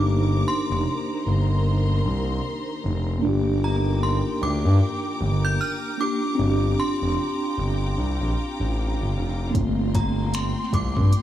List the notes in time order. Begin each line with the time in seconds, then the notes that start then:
Already playing: G1 D#3 A#3 D4 D#4 G4 C5 A#5 D6
0.48 C6
0.70 F1
1.25 G1 C6
2.05 C2
2.84 F1
3.19 D#3 A#3 D4 G5 A#5 D6
3.24 G1 F4
3.28 G4
3.64 A#5
4.03 C6
4.42 D2 D6
4.65 G2
5.21 G1
5.45 G6
5.61 F6
5.98 A#3 D4 F4 D6
6.02 G4
6.35 C4 D4
6.39 G1 F4 G5
6.44 F#4
6.51 G4
6.80 C6
7.02 F1
7.58 G1
7.97 C2
8.20 A#1
8.60 A1
8.99 G1
9.16 F1
9.51 A#3 C4
9.55 G1 F4 G5 C6, kick, closed hi-hat
9.60 A3
9.95 A#5, kick, closed hi-hat
10.34 C6, finger snap, closed hi-hat
10.73 C2 D6, kick, closed hi-hat
10.97 G2, kick
11.13 closed hi-hat